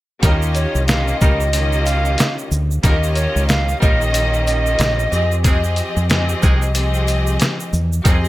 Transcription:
0.22 0.65 D#2 loud
0.22 0.83 D#3 loud
0.22 0.35 G3 loud
0.22 0.35 A#3 medium
0.22 0.84 C#4 medium
0.22 0.35 D#4 medium
0.22 0.84 F4 medium
0.22 0.84 G4 medium
0.22 0.35 A#4 loud
0.22 0.84 D#5 loud
0.22 kick loud
0.22 closed hi-hat medium
0.22 shaker medium
0.42 shaker medium
0.55 0.84 C#5 medium
0.55 closed hi-hat medium
0.55 shaker medium
0.75 1.12 C2 medium
0.75 shaker medium
0.87 1.49 D#3 loud
0.87 1.49 C#4 medium
0.87 1.49 F4 medium
0.87 1.50 G4 medium
0.87 1.50 D#5 loud
0.87 1.17 F5 medium
0.87 snare loud
0.87 closed hi-hat medium
0.87 shaker medium
1.08 shaker medium
1.21 2.15 C#2 medium
1.21 1.42 G3 loud
1.21 1.42 A#3 medium
1.21 1.42 D#4 loud
1.21 1.42 A#4 loud
1.21 1.82 D#5 medium
1.21 kick loud
1.21 shaker medium
1.40 shaker medium
1.53 2.45 D#3 loud
1.53 2.45 C#4 medium
1.53 2.45 F4 medium
1.53 2.45 G4 medium
1.53 2.45 D#5 loud
1.53 closed hi-hat loud
1.53 shaker medium
1.73 shaker soft
1.84 2.34 F5 medium
1.84 closed hi-hat medium
1.84 shaker soft
1.84 shaker medium
2.05 shaker soft
2.18 snare loud
2.18 closed hi-hat medium
2.18 shaker medium
2.39 shaker soft
2.51 2.78 D2 loud
2.51 shaker medium
2.71 shaker soft
2.83 3.26 D#2 loud
2.83 3.76 D#3 loud
2.83 2.96 G3 loud
2.83 2.96 A#3 loud
2.83 3.76 C#4 medium
2.83 2.96 D#4 medium
2.83 3.76 F4 medium
2.83 3.76 G4 medium
2.83 2.96 A#4 loud
2.83 3.76 D#5 loud
2.83 kick loud
2.83 closed hi-hat medium
2.83 shaker medium
3.03 shaker medium
3.14 3.45 C#5 medium
3.14 closed hi-hat medium
3.14 shaker medium
3.14 shaker soft
3.36 3.73 C#2 loud
3.36 shaker soft
3.48 3.78 F5 medium
3.48 snare loud
3.48 closed hi-hat medium
3.48 shaker medium
3.69 shaker medium
3.80 4.76 A#1 medium
3.80 5.12 D#3 loud
3.80 4.02 G3 loud
3.80 4.02 A#3 loud
3.80 5.12 C#4 medium
3.80 4.02 D#4 loud
3.80 5.12 F4 medium
3.80 5.10 G4 medium
3.80 4.02 A#4 loud
3.80 5.11 D#5 loud
3.80 4.43 D#5 medium
3.80 kick loud
3.80 shaker medium
4.02 shaker medium
4.14 closed hi-hat loud
4.14 shaker medium
4.34 shaker soft
4.45 5.40 D#5 medium
4.45 closed hi-hat medium
4.45 shaker soft
4.45 shaker medium
4.66 shaker soft
4.79 5.06 A#1 medium
4.79 snare loud
4.79 closed hi-hat medium
4.79 shaker medium
4.99 shaker soft
5.11 5.80 F2 loud
5.11 5.34 F3 medium
5.11 5.34 C4 medium
5.11 5.34 G4 medium
5.11 5.34 G#4 medium
5.11 5.35 D#5 loud
5.11 shaker soft
5.11 shaker medium
5.32 shaker soft
5.43 5.57 D#3 medium
5.43 6.05 F3 loud
5.43 5.57 G#3 loud
5.43 6.05 C4 medium
5.43 5.57 C4 loud
5.43 6.05 G4 medium
5.43 5.57 G#4 loud
5.43 6.06 G#4 medium
5.43 6.06 D#5 loud
5.43 kick loud
5.43 closed hi-hat medium
5.43 shaker medium
5.64 shaker soft
5.76 closed hi-hat medium
5.76 shaker medium
5.76 shaker soft
5.97 6.34 F2 medium
5.97 shaker medium
6.09 6.70 F3 loud
6.09 6.71 C4 loud
6.09 6.71 G4 medium
6.09 6.71 G#4 medium
6.09 6.71 D#5 loud
6.09 snare loud
6.09 closed hi-hat medium
6.09 shaker medium
6.29 shaker medium
6.42 7.37 C2 medium
6.42 6.63 D#3 loud
6.42 6.63 G#3 medium
6.42 6.63 C4 loud
6.42 6.63 G#4 loud
6.42 kick loud
6.42 shaker medium
6.62 shaker soft
6.74 7.66 F3 loud
6.74 7.67 C4 medium
6.74 7.67 G4 medium
6.74 7.67 G#4 medium
6.74 7.67 D#5 loud
6.74 closed hi-hat loud
6.74 shaker medium
6.94 shaker soft
7.08 closed hi-hat medium
7.08 shaker soft
7.08 shaker medium
7.27 shaker soft
7.40 snare loud
7.40 closed hi-hat medium
7.40 shaker medium
7.60 shaker soft
7.73 7.99 E2 medium
7.73 shaker soft
7.73 shaker medium
7.93 shaker soft
8.05 8.28 F2 loud
8.05 8.17 D#3 loud
8.05 8.28 F3 loud
8.05 8.17 G#3 medium
8.05 8.17 C4 loud
8.05 8.28 C4 medium
8.05 8.28 G4 medium
8.05 8.17 G#4 medium
8.05 8.28 G#4 loud
8.05 8.28 D#5 loud
8.05 kick loud
8.05 closed hi-hat medium
8.05 shaker medium
8.25 shaker medium

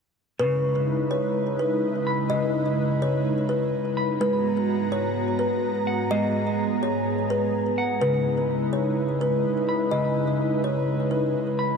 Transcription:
0.39 4.17 C#3 medium
0.39 1.83 C#3 medium
0.39 4.17 G#3 medium
0.39 4.17 D#4 medium
0.39 4.17 E4 medium
0.39 1.07 B4 loud
0.39 4.17 B4 medium
1.11 1.56 C#5 medium
1.59 1.82 B4 medium
2.07 3.49 B5 medium
2.30 3.73 C#3 medium
2.30 2.97 D#5 medium
3.02 3.47 C#5 medium
3.49 3.72 B4 medium
3.97 4.21 B5 medium
4.20 7.98 G#2 medium
4.20 5.63 G#3 medium
4.20 11.77 G#3 medium
4.20 7.98 B3 medium
4.20 6.09 F#4 medium
4.20 4.88 B4 loud
4.20 7.98 A#5 medium
4.92 5.37 C#5 medium
5.39 5.62 B4 medium
5.87 7.30 F#5 medium
6.11 7.54 G#3 medium
6.11 8.00 G#4 medium
6.11 6.78 D#5 loud
6.83 7.27 C#5 medium
7.30 7.53 B4 medium
7.78 8.02 F#5 medium
8.01 11.77 C#3 medium
8.01 9.44 C#3 medium
8.01 11.77 D#4 medium
8.01 11.77 E4 medium
8.01 8.69 B4 loud
8.01 11.77 B4 medium
8.73 9.18 C#5 medium
9.21 9.44 B4 medium
9.69 11.11 B5 medium
9.91 11.35 C#3 medium
9.91 10.59 D#5 medium
10.64 11.09 C#5 medium
11.11 11.34 B4 medium
11.59 11.77 B5 medium

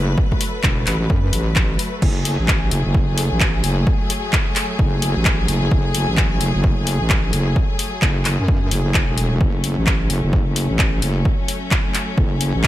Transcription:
0.00 0.16 F#1 medium
0.00 12.67 F#3 medium
0.00 12.67 A3 medium
0.00 2.01 B4 medium
0.18 kick loud
0.32 kick medium
0.41 open hi-hat loud
0.63 0.85 E1 loud
0.63 kick loud
0.63 clap loud
0.87 1.09 A1 loud
0.87 clap medium
0.87 open hi-hat loud
1.10 1.32 F#2 loud
1.10 kick loud
1.33 1.78 A1 loud
1.33 open hi-hat loud
1.56 kick loud
1.56 clap loud
1.79 open hi-hat loud
2.02 2.37 F#1 loud
2.02 9.39 G#4 medium
2.02 kick loud
2.02 crash medium
2.25 open hi-hat loud
2.40 2.70 A1 loud
2.48 kick loud
2.48 clap loud
2.71 2.83 F#1 medium
2.71 open hi-hat loud
2.86 3.30 F#1 loud
2.94 kick loud
3.18 open hi-hat loud
3.32 3.62 A1 loud
3.40 kick loud
3.40 clap loud
3.64 3.85 F#1 medium
3.64 open hi-hat loud
3.87 kick loud
4.10 open hi-hat loud
4.33 kick loud
4.33 clap loud
4.56 clap medium
4.56 open hi-hat loud
4.79 5.14 F#1 loud
4.79 kick loud
5.02 open hi-hat loud
5.16 5.47 A1 loud
5.25 kick loud
5.25 clap loud
5.48 5.70 F#1 medium
5.48 open hi-hat loud
5.71 6.06 F#1 loud
5.71 kick loud
5.95 open hi-hat loud
6.09 6.39 A1 medium
6.17 kick loud
6.17 clap loud
6.41 6.53 F#1 loud
6.41 open hi-hat loud
6.55 6.99 F#1 loud
6.64 kick loud
6.87 open hi-hat loud
7.01 7.32 A1 loud
7.10 kick loud
7.10 clap loud
7.33 7.55 F#1 loud
7.33 open hi-hat loud
7.56 kick loud
7.79 open hi-hat loud
8.02 8.37 F#1 medium
8.02 kick loud
8.02 clap loud
8.25 clap medium
8.25 open hi-hat loud
8.39 8.70 F#2 loud
8.48 kick loud
8.71 9.06 F#1 loud
8.71 open hi-hat loud
8.94 kick loud
8.94 clap loud
9.09 9.39 E1 medium
9.18 open hi-hat loud
9.41 9.76 F#1 medium
9.41 12.67 C#4 medium
9.41 kick loud
9.64 open hi-hat loud
9.78 10.08 A1 loud
9.87 kick loud
9.87 clap loud
10.10 10.22 F#1 loud
10.10 open hi-hat loud
10.24 10.68 F#1 loud
10.33 kick loud
10.56 open hi-hat loud
10.70 11.01 A1 medium
10.79 kick loud
10.79 clap loud
11.02 11.24 F#1 medium
11.02 open hi-hat loud
11.25 kick loud
11.48 open hi-hat loud
11.71 kick loud
11.71 clap loud
11.94 clap medium
11.94 open hi-hat loud
12.18 12.53 F#1 loud
12.18 kick loud
12.41 open hi-hat loud
12.55 12.67 A1 loud
12.64 kick loud
12.64 clap loud

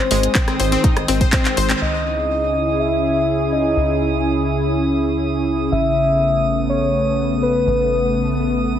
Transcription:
0.00 1.80 D#3 medium
0.00 1.78 G#3 medium
0.00 1.80 C4 medium
0.00 0.26 C5 loud
0.00 1.80 D#6 medium
0.11 0.28 G#1 loud
0.11 0.16 G#3 medium
0.11 open hi-hat loud
0.23 closed hi-hat medium
0.35 0.40 C4 loud
0.35 kick loud
0.35 clap loud
0.35 closed hi-hat medium
0.48 0.59 C4 medium
0.48 cross-stick medium
0.48 closed hi-hat soft
0.60 0.77 G#1 medium
0.60 0.64 C5 medium
0.60 open hi-hat medium
0.72 0.80 C4 loud
0.72 closed hi-hat medium
0.84 0.96 D#4 medium
0.84 kick loud
0.84 closed hi-hat medium
0.97 1.05 G#1 medium
0.97 cross-stick medium
0.97 closed hi-hat soft
1.08 1.25 G#1 loud
1.08 1.13 C4 medium
1.08 open hi-hat loud
1.21 1.25 C5 loud
1.21 kick medium
1.21 closed hi-hat medium
1.33 1.44 C4 loud
1.33 kick loud
1.33 clap loud
1.33 closed hi-hat medium
1.45 1.50 C4 medium
1.45 clap medium
1.45 closed hi-hat soft
1.57 1.74 G#1 medium
1.57 1.62 C5 loud
1.57 open hi-hat medium
1.70 1.77 C4 medium
1.70 clap loud
1.70 closed hi-hat medium
1.81 3.74 C#2 medium
1.81 8.79 C#3 medium
1.81 5.68 C#4 medium
1.81 5.68 E4 medium
1.81 5.68 G#4 medium
1.81 2.81 D#5 loud
1.81 8.79 D#6 medium
2.79 3.43 E5 medium
3.52 4.16 D#5 medium
3.77 5.69 C#2 medium
5.72 7.65 A1 medium
5.72 8.79 A3 medium
5.72 8.79 B3 medium
5.72 6.60 E5 loud
6.69 7.33 C#5 medium
7.43 8.06 B4 medium
7.67 8.79 A1 medium

